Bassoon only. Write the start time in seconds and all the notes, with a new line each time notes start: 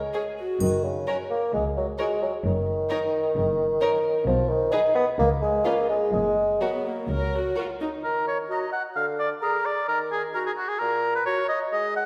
Already playing: G#3
0.61 D#3
0.84 C#3
1.07 C#4
1.30 A#3
1.53 G#3
1.77 F#3
1.99 G#3
2.22 F#3
2.45 D#3
4.27 F3
4.49 D#3
4.72 D#4
4.95 B3
5.19 A#3
5.42 G#3
5.65 A#3
5.89 G#3
6.13 G#3
6.61 F#3
8.04 D#3
8.96 D3
9.88 D#3
10.81 A#2
11.72 G#3